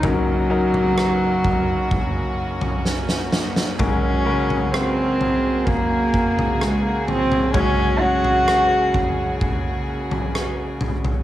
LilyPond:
<<
  \new Staff \with { instrumentName = "Grand piano" } { \time 4/4 \key ges \lydian \tempo 4 = 64 <ges des' ees' bes'>8 <ges des' ees' bes'>2 r4. | <aes des' ges' bes'>8 <des aes ges' bes'>2 r4. | <aes des' ges' des''>8 <aes des' ges' des''>2 r4. | }
  \new Staff \with { instrumentName = "Grand piano" } { \clef bass \time 4/4 \key ges \lydian <ges,, ges,>1 | <ges,, ges,>1 | <ges,, ges,>1 | }
  \new Staff \with { instrumentName = "String section" } { \time 4/4 \key ges \lydian << { <ges, des ges'>1 | <des aes'>1~ | <des aes'>1 | } \\ { <bes ees'>2 des'2 | ges'1~ | ges'1 | } >> }
  \new Staff \with { instrumentName = "Cello" } { \time 4/4 \key ges \lydian ges2. r4 | des'4 c'4 bes4 aes16 bes16 c'8 | des'8 ges'4. r2 | }
  \new DrumStaff \with { instrumentName = "Drums" } \drummode { \time 4/4 <bd tomfh>8. tomfh16 ss8 <bd tomfh>8 <bd tomfh>8. tomfh16 sn16 sn16 sn16 sn16 | <bd tomfh>8. tomfh16 ss8 tomfh8 <bd tomfh>8 bd16 tomfh16 ss8 tomfh16 tomfh16 | <bd tomfh>8. tomfh16 ss8 <bd tomfh>8 <bd tomfh>8. tomfh16 ss8 tomfh16 tomfh16 | }
>>